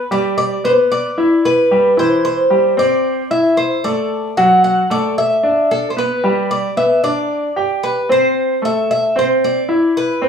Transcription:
Already playing: B4
0.11 G3 G4 D5
0.38 D5
0.64 B3 B4 C5
0.92 D5
1.18 E4 E5
1.45 B4
1.71 G3 G4
1.97 E3 E4 C5
2.25 C5
2.50 G3 G4
2.77 C4 C5 D5
3.31 E4 E5
3.57 C5
3.84 A3 A4 D5
4.37 F#3 F#4 F#5
4.64 F#5
4.90 A3 A4 D5
5.18 E5
5.43 D4 D5
5.71 A4
5.90 C5
5.97 B3 B4
6.24 G3 G4
6.51 D5
6.77 B3 B4 E5
7.04 D4 D5
7.56 G4 G5
7.83 B4
8.09 C4 C5
8.62 A3 A4 E5
8.91 E5
9.16 C4 C5
9.44 D5
9.69 E4 E5
9.97 B4
10.22 C4 C5

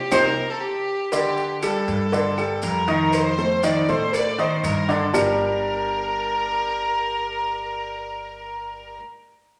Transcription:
Already playing: G4
0.11 C2 C4 D#4 G4 A#4 C5, low bongo, claves, maracas
0.49 A4
0.61 G4
1.12 D3 D4 G4 D5, cowbell, maracas
1.37 maracas
1.62 G3 G4 A4, cowbell, claves, maracas
1.88 G2, cowbell, maracas
2.12 D3 D4 D5, cowbell, maracas
2.38 G3 G4 A4, claves, maracas
2.62 F2 A#4, cowbell, maracas
2.88 D#3 D#4 D#5, cowbell, maracas
3.13 C5, cowbell, claves, maracas
3.38 A3 A4 C5, maracas
3.63 D#3 D#4 D5 D#5, cowbell, maracas
3.88 A2 A3 A4 C5, maracas
4.13 D5, cowbell, claves, maracas
4.39 D#3 D#4 C5 D#5, maracas
4.64 G2 A#4, cowbell, claves, maracas
4.89 D3 D4 A4 D5, cowbell, maracas
5.13 G1 G3 D4 G4 A#4 D5 A5, low bongo, claves, maracas

